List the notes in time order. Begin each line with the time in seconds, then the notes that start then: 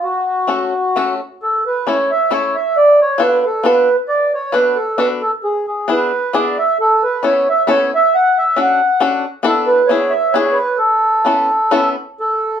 0.03 F#4
0.47 A3 C#4 F#4 A4
0.96 A3 C#4 F#4 A4
1.43 A4
1.66 B4
1.87 A3 C#4 E4 A4 C#5
2.11 E5
2.31 A3 C#4 E4 A4 C#5
2.55 E5
2.77 D5
3.01 C#5
3.18 B3 D4 F4 A4 B4
3.45 A4
3.64 B3 D4 F4 A4 B4
4.08 D5
4.34 C#5
4.52 B3 D4 F#4 A4 B4
4.76 A4
4.98 B3 D4 F#4 A4 B4
5.22 A4
5.44 G#4
5.68 G#4
5.88 B3 D4 E4 G#4 B4
6.33 B3 D4 E4 G#4 D5
6.58 E5
6.80 A4
7.03 B4
7.23 B3 C#4 E4 A4 C#5
7.49 E5
7.67 B3 C#4 E4 A4 C#5
7.95 E5
8.15 F#5
8.38 E5
8.56 C#4 D4 F#4 A4
8.62 F#5
9.00 C#4 D4 F#4 A4
9.43 B3 D4 E4 A4
9.66 B4
9.87 B3 D4 G#4 C#5
9.91 E4
10.10 E5
10.33 B3 D4 E4 G#4 C#5
10.53 B4
10.78 A4
11.25 B3 C#4 E4 A4
11.71 B3 C#4 E4 A4
12.20 A4